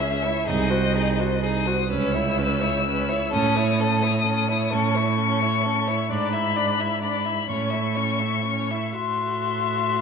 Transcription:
Already playing: C#2 E5
0.00 C#4 G#4
0.23 E4 C#5
0.47 C2 D#4 G#4 D#5
0.70 F#4 C5
0.94 D#4 G#4
1.19 F#4 C5
1.42 D#4 G#4 D#6
1.66 F#4 C5
1.89 C#2 C#4 B4 E6
2.12 E4 C#5
2.38 C#4 B4
2.61 E4 C#5
2.85 C#4 B4
3.09 E4 C#5
3.32 A2 C#4 A4 D#6
3.55 E4 C#5
3.79 C#4 A4
4.02 E4 C#5
4.24 C#4 A4
4.48 E4 C#5
4.71 A2 C#4 A4 C#6
4.94 E4 C#5
5.18 C#4 A4
5.41 E4 C#5
5.63 C#4 A4
5.88 E4 C#5
6.10 G#2 D4 D5 B5
6.33 E4 E5
6.56 D4 D5
6.80 E4 E5
7.02 D4 D5 B5
7.25 E4 E5
7.48 A2 C#4 C#5 C#6
7.70 E4 E5
7.95 C#4 C#5
8.19 E4 E5
8.45 C#4 C#5
8.71 E4 E5
8.95 A2 F#4 E5 C6

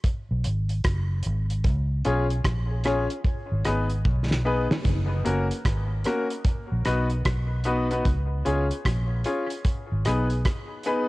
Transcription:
0.04 kick, closed hi-hat
0.31 B1
0.44 G#1, closed hi-hat
0.69 closed hi-hat
0.84 F#1, kick, cross-stick, closed hi-hat
1.23 G#1, closed hi-hat
1.50 closed hi-hat
1.64 C#2, kick, closed hi-hat
2.05 B1 C#4 F4 G#4 C#5, closed hi-hat
2.30 closed hi-hat
2.44 A#1, kick, cross-stick, closed hi-hat
2.71 G#4 C#5
2.84 C#4 F4 G#4 C#5, cross-stick, closed hi-hat
3.10 closed hi-hat
3.24 kick, closed hi-hat
3.52 G#1
3.65 G#1 B3 D#4 G#4 B4, cross-stick, closed hi-hat
3.90 closed hi-hat
4.05 B1, kick
4.31 snare
4.45 B3 D#4 G#4 B4
4.71 snare
4.85 F#1, kick, closed hi-hat
5.25 F#1 A#3 C#4 F#4 A#4, closed hi-hat
5.51 closed hi-hat
5.65 G#1, kick, cross-stick, closed hi-hat
6.05 A#3 C#4 F#4 A#4, cross-stick, closed hi-hat
6.31 closed hi-hat
6.45 kick, closed hi-hat
6.72 A#1
6.85 B1 B3 D#4 F#4 B4, cross-stick, closed hi-hat
7.10 closed hi-hat
7.25 B1, kick, cross-stick, closed hi-hat
7.64 B3 D#4 F#4 B4, closed hi-hat
7.91 B3 D#4 F#4 B4, closed hi-hat
8.05 C#2, kick, closed hi-hat
8.45 C#2 C#4 F4 G#4 C#5, closed hi-hat
8.71 closed hi-hat
8.85 A#1, kick, cross-stick, closed hi-hat
9.24 C#4 F4 G#4 C#5, closed hi-hat
9.50 closed hi-hat
9.65 kick, closed hi-hat
9.92 G#1
10.05 B1 B3 D#4 G#4 B4, cross-stick, closed hi-hat
10.30 G#4 B4, closed hi-hat
10.45 kick, cross-stick, closed hi-hat
10.83 B3 D#4 G#4 B4, closed hi-hat

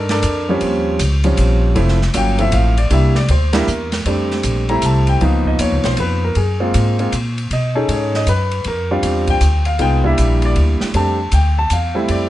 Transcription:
Already playing: G2
0.09 D4 A4 A#4 D5, snare, ride
0.22 F2, hi-hat pedal, ride
0.49 F3 G3 C4 C#4
0.61 D#2, ride
0.99 C#2, hi-hat pedal, ride
1.24 F3 G3 C4 C#4, ride
1.37 A#1, hi-hat pedal, ride
1.75 F1 F3 A3 C4 E4, ride
1.88 snare
2.02 snare
2.14 G1 F#3 A#3 C#4 F4 G5, hi-hat pedal, ride
2.38 F3 A3 C4 E4 E5, ride
2.52 A1 F5, hi-hat pedal, ride
2.77 D5, ride
2.90 C2 G3 A#3 D4 E4 E5, ride
3.15 D5, snare
3.28 D2 C5, ride
3.53 G3 A#3 D4 E4 A#4, snare, ride
3.67 E2, hi-hat pedal
3.92 snare, ride
4.05 F2 G3 A3 C4 D4, ride
4.31 snare
4.43 A#1, hi-hat pedal, ride
4.69 G3 A3 C4 E4 A#5, ride
4.82 C2 A5, hi-hat pedal, ride
5.07 G5, ride
5.21 C#2 F3 A#3 B3 D#4 F5, ride
5.45 D#5, kick
5.59 D#2 C#5, hi-hat pedal, ride
5.72 C#2
5.83 B1 C5, snare, ride
5.97 F2 B4, ride
6.24 A#4
6.35 F#2 G#4, ride
6.60 G#3 A#3 C4 F4
6.74 G#2, hi-hat pedal, ride
6.99 G#3 A#3 C4 F4, ride
7.12 A#2, hi-hat pedal, ride
7.38 ride
7.51 B2 D#5, ride
7.75 C#4 D#4 G#4 A4
7.88 G#2, ride
7.92 C#5
8.14 D#5, snare
8.27 F#2 B4, hi-hat pedal, ride
8.51 ride
8.64 F2 A#4, ride
8.91 G3 C4 D4 F4
9.03 E2, hi-hat pedal, ride
9.27 G5, kick, ride
9.41 D2, hi-hat pedal, ride
9.65 F5, ride
9.79 C2 G#3 B3 D#4 F4 G5, ride
10.04 G3 A#3 D4 E4 E5, kick
10.18 A#1, hi-hat pedal, ride
10.42 D5, ride
10.56 D2, ride
10.81 muted upright bass stroke, snare
10.94 F2 G3 A3 C4 D4 A5, ride
11.32 D2 G5, hi-hat pedal, ride
11.59 A5
11.70 E2 F5, hi-hat pedal, ride
11.95 G3 A3 C4 E4
12.08 F2 D5, ride

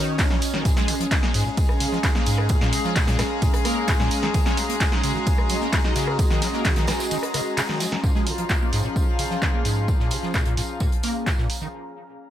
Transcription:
Already playing: D#3 C#4 F#4 C#5 D#5 A#5
0.18 D#4, kick, snare, clap, ride, tambourine
0.30 D#3, snare
0.42 open hi-hat, tambourine
0.54 D#3, snare
0.65 A#2 G#3 G#4, kick, ride, tambourine
0.76 G#3, snare
0.88 C#3, open hi-hat, tambourine
1.00 F3, closed hi-hat
1.09 G#4, kick, snare, clap, ride, tambourine
1.23 A#3, snare
1.29 F5
1.34 G#2 A#5, open hi-hat, tambourine
1.46 A#2
1.57 kick, ride, tambourine
1.69 cross-stick
1.80 C#3, open hi-hat, tambourine
1.92 F3, snare
2.04 D#3, kick, snare, clap, ride, tambourine
2.15 A#3, snare
2.26 G#2, open hi-hat, tambourine
2.38 cross-stick
2.49 A#2, kick, ride, tambourine
2.61 A#2, snare
2.73 C#3, open hi-hat, tambourine
2.84 F3, snare
2.96 A#2, kick, snare, clap, ride, tambourine
3.07 A#2, snare, closed hi-hat
3.19 A#2, cross-stick, snare, open hi-hat, tambourine
3.42 A#2, kick, ride, tambourine
3.54 cross-stick, closed hi-hat
3.65 A#3, cross-stick, open hi-hat, tambourine
3.88 G#2, kick, snare, clap, ride, tambourine
4.00 A#2, snare
4.11 open hi-hat, tambourine
4.23 D#3, snare
4.34 D#3, kick, ride, tambourine
4.43 C#4 F#4, snare
4.57 F#3, open hi-hat, tambourine
4.69 A#3, closed hi-hat
4.80 D#5, kick, snare, clap, ride, tambourine
4.92 D#4, snare
5.04 C#3, open hi-hat, tambourine
5.15 D#3
5.27 kick, ride, tambourine
5.38 cross-stick
5.49 F#3, open hi-hat, tambourine
5.61 A#3, snare
5.73 G#3, kick, snare, clap, ride, tambourine
5.84 D#4, snare
5.96 C#3, snare, open hi-hat, tambourine
6.07 cross-stick
6.19 D#3, kick, ride, tambourine
6.30 D#3, snare
6.42 F#3, snare, open hi-hat, tambourine
6.53 A#3, snare
6.65 D#3, kick, snare, clap, ride, tambourine
6.76 D#3, snare, closed hi-hat
6.87 D#3, cross-stick, snare, open hi-hat, tambourine
7.00 snare, tambourine
7.11 D#3, ride, tambourine
7.23 cross-stick, closed hi-hat
7.34 C#3, cross-stick, open hi-hat, tambourine
7.57 C#3, snare, clap, ride, tambourine
7.69 D#3, snare
7.80 F#3, snare, open hi-hat, tambourine
7.92 D#3, snare
8.03 A#2 F3 C#4 F4, kick, tambourine
8.15 G#3, snare
8.26 C#3 G#4, open hi-hat, tambourine
8.38 F3, closed hi-hat
8.49 kick, snare, clap, tambourine
8.61 A#3
8.71 G#2 F5, open hi-hat, tambourine
8.85 A#2
8.96 kick, tambourine
9.19 C#3, open hi-hat, tambourine
9.31 F3, snare
9.42 D#3, kick, snare, clap, tambourine
9.54 A#3
9.65 G#2, open hi-hat, tambourine
9.88 A#2, kick, tambourine
10.00 A#2, snare
10.11 C#3, open hi-hat, tambourine
10.23 F3, snare
10.34 A#2, kick, snare, clap, tambourine
10.45 A#2, closed hi-hat
10.57 A#2, open hi-hat, tambourine
10.80 A#2, kick, tambourine
10.92 closed hi-hat
11.03 A#3, open hi-hat, tambourine
11.26 G#2, kick, snare, clap, tambourine
11.38 A#2, snare
11.50 open hi-hat, tambourine
11.61 D#3

